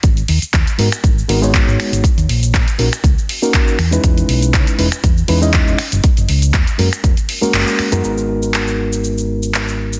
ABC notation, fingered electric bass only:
X:1
M:4/4
L:1/16
Q:"Swing 16ths" 1/4=120
K:G#m
V:1 name="Fingered electric bass" clef=bass
G,,, z D,, z D,, z G,, z G,,, z G,,,2 z G,, z G,,, | z D,, A,,,2 A,, z A,,, z C,, z4 z E,, z | E,, z B,,,2 C, z E,,, z E,, z E,,2 z E,,, z F,,, | z F,,, C,,2 D,, z F,, z E,,, z3 F,,, z2 F,, |
G,,,16 |]